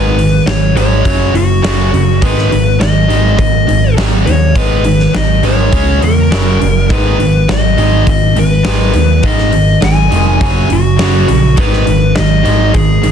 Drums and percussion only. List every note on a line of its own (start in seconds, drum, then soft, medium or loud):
0.19 open hi-hat medium
0.47 snare loud
0.47 open hi-hat medium
0.77 open hi-hat soft
1.05 kick loud
1.05 open hi-hat medium
1.35 open hi-hat soft
1.64 snare loud
1.64 open hi-hat medium
1.94 open hi-hat soft
2.22 kick loud
2.22 open hi-hat medium
2.38 snare soft
2.52 open hi-hat medium
2.81 snare loud
2.81 open hi-hat medium
3.10 open hi-hat soft
3.39 kick loud
3.39 open hi-hat medium
3.69 open hi-hat medium
3.98 snare loud
3.98 open hi-hat medium
4.27 open hi-hat medium
4.55 kick loud
4.55 open hi-hat medium
4.84 open hi-hat medium
4.99 snare soft
5.14 snare loud
5.14 open hi-hat medium
5.43 open hi-hat soft
5.73 kick loud
5.73 open hi-hat medium
6.02 open hi-hat soft
6.32 snare loud
6.32 open hi-hat medium
6.62 open hi-hat medium
6.90 kick loud
6.90 open hi-hat medium
7.20 open hi-hat soft
7.49 snare loud
7.49 open hi-hat medium
7.78 open hi-hat soft
8.07 kick loud
8.07 open hi-hat medium
8.36 open hi-hat medium
8.65 snare loud
8.65 open hi-hat medium
8.93 open hi-hat soft
9.23 kick loud
9.23 open hi-hat medium
9.38 snare soft
9.52 open hi-hat medium
9.82 snare loud
9.82 open hi-hat medium
10.12 open hi-hat medium
10.41 kick loud
10.41 open hi-hat medium
10.70 open hi-hat medium
10.99 snare loud
10.99 open hi-hat medium
11.28 open hi-hat medium
11.57 kick loud
11.57 open hi-hat medium
11.73 snare soft
11.87 open hi-hat soft
12.16 snare loud
12.16 open hi-hat medium
12.45 open hi-hat soft
12.74 kick loud
12.74 open hi-hat medium
13.03 open hi-hat soft